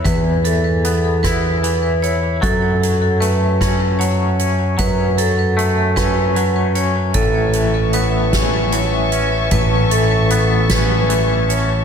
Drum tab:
HH |xxxxxx|xxxxxx|xxxxxx|xxxxxx|
SD |---r--|---r--|---r--|---o--|
BD |o--o--|o--o--|o--o--|o--o--|

HH |xxxxxx|
SD |---o--|
BD |o--o--|